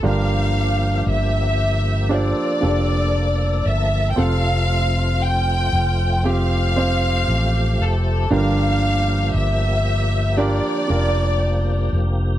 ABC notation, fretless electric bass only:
X:1
M:4/4
L:1/16
Q:1/4=58
K:Gdor
V:1 name="Fretless electric bass" clef=bass
G,,,4 G,,,4- G,,, z F,,,4 G,,,2 | F,,,6 F,,,6 A,,,2 F,,,2 | G,,,4 G,,,4- G,,, z F,,,4 F,,,2 |]